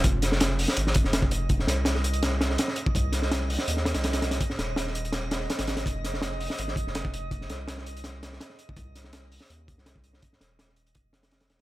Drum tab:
HH |x-x-x-o-x-x-x-x-|x-x-x-xxx-x-x-x-|x-x-x-o-x-xxxxxx|x-x-x-xxx-x-xxxx|
SD |--ooo--o-o-oo---|-oo-oo--o-oooo--|--ooo--o-ooooooo|-oo-oo--o-oooooo|
BD |o---------o--o--|o--------------o|o---------------|o---------------|

HH |x-x-x-o-x-x-x-x-|x-x-x-xxx-x-x-x-|x-x-x-o-x-x-x-x-|x-x-x-xxx-xxxxx-|
SD |--ooo--o-o-oo---|-oo-oo--o-oooo--|--ooo--o---oo--o|-oo-oo----ooooo-|
BD |o---------o--o--|o--------------o|o---------o--o--|o-------o-------|